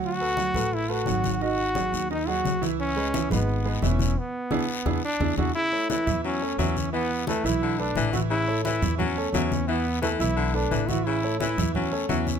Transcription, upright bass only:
X:1
M:4/4
L:1/8
Q:1/4=174
K:A
V:1 name="Upright bass" clef=bass
D,,3 A,,,3 G,,,2- | G,,,3 ^D,,3 C,,2- | C,,3 G,,,3 E,,,2 | z2 E,, z E,, z E,, E,, |
z3 E,,3 E,,2- | E,,3 B,,,3 A,,,2- | A,,,3 E,,3 E,,2- | E,,3 B,,,3 A,,,2- |
A,,,3 E,,3 E,,2 |]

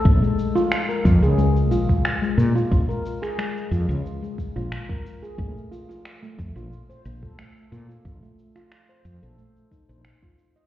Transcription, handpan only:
X:1
M:4/4
L:1/16
Q:"Swing 16ths" 1/4=90
K:Bbm
V:1 name="Handpan"
z A,2 F z B z A A, z F F z A,2 F | z B z A A, z F F z A,2 F z B z A | =A, z F F z A,2 F z c z =A A, z F F | z =A,2 F z c z =A A, z E c z F z e |]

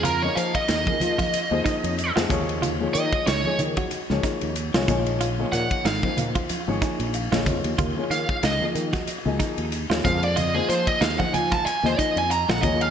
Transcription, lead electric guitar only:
X:1
M:4/4
L:1/16
Q:"Swing 16ths" 1/4=93
K:Fphr
V:1 name="Lead electric guitar"
B d f e8- e2 z3 | z2 e2 d2 z8 z2 | z2 g2 f2 z8 z2 | z2 f2 e2 z8 f =d |
e A c e f g a =a _a c e a b g e f |]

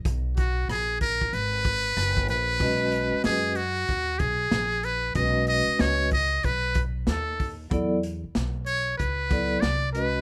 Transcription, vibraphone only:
X:1
M:4/4
L:1/8
Q:"Swing 16ths" 1/4=94
K:B
V:1 name="Vibraphone"
z8 | [G,CFBd]3 z4 z | [G,CFBd]3 z4 z | [F,B,E=A=d] z4 [F,B,EAd] z [G,CFB^d] |]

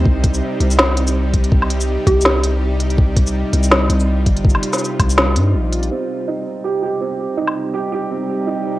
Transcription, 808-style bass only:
X:1
M:4/4
L:1/8
Q:"Swing 16ths" 1/4=164
K:Cm
V:1 name="808-style bass" clef=bass
C,,2 z C,,4- C,,- | C,,2 z C,,4- C,,- | C,,2 z C,,2 C,,2 G,,,- | G,,, z2 C,,2 G,, B,,,2 |
z8 | z8 |]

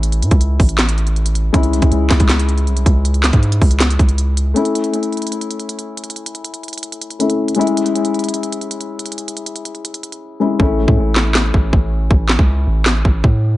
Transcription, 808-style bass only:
X:1
M:4/4
L:1/16
Q:1/4=159
K:Alyd
V:1 name="808-style bass" clef=bass
A,,,2 A,, C,,3 A,,,8- A,,,2 | C,,2 ^B,,, C,, C,,2 C,, C,,4- C,, B,,,2 C,,2- | C,,3 G,,3 C,,4 C,,6 | z16 |
z16 | z16 | z16 | A,,,3 A,, A,,,6 A,,,2 A,,,4 |
A,,,3 C,,3 A,,,4 A,,,2 A,,4 |]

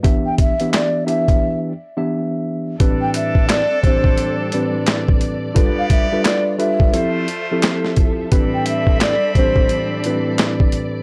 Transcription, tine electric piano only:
X:1
M:4/4
L:1/16
Q:"Swing 16ths" 1/4=87
K:Am
V:1 name="Tine electric piano"
[E,B,DGe]3 [E,B,DGe]3 [E,B,DGe]4 z [E,B,DGe]4- [E,B,DGe] | [A,,E,CDGB]4- [A,,E,CDGB] z [A,,E,CDGc]4 [A,,E,CDGB]6 | [G,DFAB]3 [G,DFAB]3 [G,DFAB]2 [F,CEGA]2 z [F,CEGA]4- [F,CEGA] | [A,,E,CDGB]4- [A,,E,CDGB] z [A,,E,CDGc]4 [A,,E,CDGB]6 |]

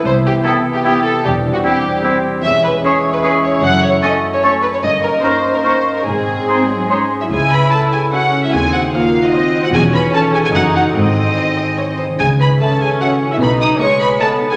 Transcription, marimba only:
X:1
M:3/4
L:1/16
Q:1/4=150
K:Clyd
V:1 name="Marimba"
z12 | z12 | [K:C#m] z12 | z12 |
z12 | z8 C3 E | G2 B2 A2 G2 F3 E | G2 _G2 ^E3 _E E3 G |
G2 B2 A2 G G F2 F2 | D8- D2 z2 | G2 B2 A2 G2 F3 E | B2 d2 c2 B2 A3 G |]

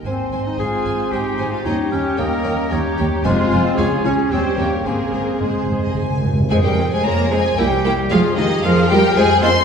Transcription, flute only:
X:1
M:3/4
L:1/16
Q:1/4=112
K:Ab
V:1 name="Flute"
a4 a8 | g8 b4 | a4 a4 g4 | a4 a6 z2 |
[K:Fm] c B2 c d2 c2 B2 B2 | A2 G2 A2 B2 c2 e2 |]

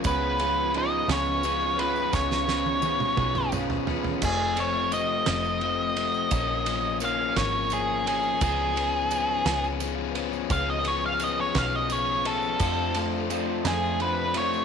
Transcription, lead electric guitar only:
X:1
M:6/8
L:1/16
Q:3/8=57
K:Dbmix
V:1 name="Lead electric guitar"
c4 e2 d4 c2 | d8 z4 | A2 d2 e8- | e4 f2 d2 A2 A2 |
A6- A z4 z | f e d f e d f e d2 =A2- | =A2 z4 _A2 c2 d2 |]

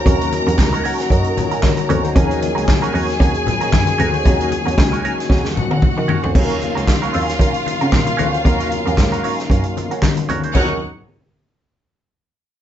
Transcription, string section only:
X:1
M:4/4
L:1/8
Q:"Swing 16ths" 1/4=114
K:Ebm
V:1 name="String section"
[Bb]8 | [Aa]8- | [Aa]4- [Aa] [Gg]3 | [Ff]8- |
[Ff]6- [Ff] z | [Edg] z6 z |]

